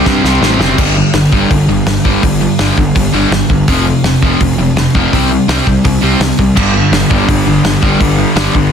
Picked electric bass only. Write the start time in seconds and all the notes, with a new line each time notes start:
0.06 G2
0.24 C2
0.41 A1
0.59 F#1
0.78 G1
1.14 G1
1.33 G1
1.51 G1
1.67 G1
1.86 G1
2.05 G1
2.23 G1
2.60 G1
2.78 G1
2.96 G1
3.13 G1
3.31 G1
3.50 G1
3.68 F1
4.03 F1
4.22 F1
4.41 F1
4.57 F1
4.75 F1
4.95 F1
5.13 C2
5.48 C2
5.67 C2
5.85 C2
6.02 C2
6.20 C2
6.39 C2
6.57 G1
6.92 G1
7.11 G1
7.28 G1
7.46 G1
7.64 G1
7.83 G1
8.01 G1
8.36 G1
8.55 G1